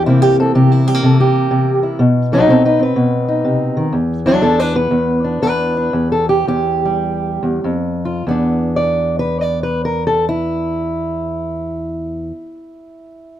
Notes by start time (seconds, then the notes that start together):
0.06 C3 E3 A#3 C4 E4
0.22 G4
0.39 C4 A4
0.55 C3 G4
0.72 E4
0.87 G3 G4
0.94 A#3
1.03 C3 A4
1.20 G4
1.51 C3
1.83 E4
1.99 B2
2.32 F#3 D#4 A4
2.47 B2 C4 A4
2.65 D#4 B4
2.79 C4 B4
2.96 B2
3.28 D#4
3.44 C3
3.77 D#3
3.93 E2
4.26 F#3 D4 E4
4.41 E2 E4 A4
4.59 D4 B4
4.75 B3 B4
4.91 E2
5.24 D4
5.42 E2 B4
5.77 D4
5.93 E2
6.12 A4
6.29 G4
6.47 E2 G4
6.85 G3
7.43 E2
7.64 F2
8.05 F4
8.27 E2 B3 D4
8.76 D5
9.19 B4
9.41 D5
9.63 B4
9.85 A#4
10.07 A4
10.29 E4